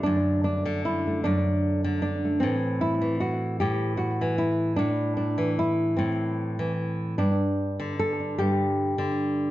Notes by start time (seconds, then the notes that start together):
0.03 F#2 D3 A3 D4
0.44 D4
0.65 D3
0.85 E4
1.07 A3
1.24 F#2 D4
1.84 D3
2.02 D4
2.25 A3
2.40 A2 E3 C4
2.81 E4
3.01 E3
3.20 F#4
3.60 A2 G4
3.97 F#4
4.21 E3
4.38 E4
4.76 A2 D4
5.17 D4
5.38 E3
5.59 E4
5.97 A2 C4
6.59 E3
7.18 G2 D4
7.80 D3
7.99 A4
8.20 D4
8.38 G2 G4
8.98 D3